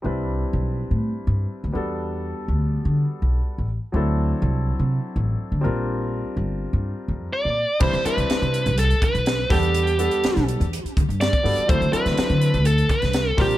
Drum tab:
CC |----------------|----------------|----------------|----------------|
HH |----------------|----------------|----------------|----------------|
SD |----------------|----------------|----------------|----------------|
BD |----------------|----------------|----------------|----------------|

CC |x---------------|----------------|----------------|
HH |-xxxxxxxxxxxx-ox|xxxxxxxxxxxxxxox|xxxxxxxxxxxxx-ox|
SD |----o-------o-o-|----oo------o---|---oo------oo-o-|
BD |o---------o---o-|----------o--o--|o---------o---o-|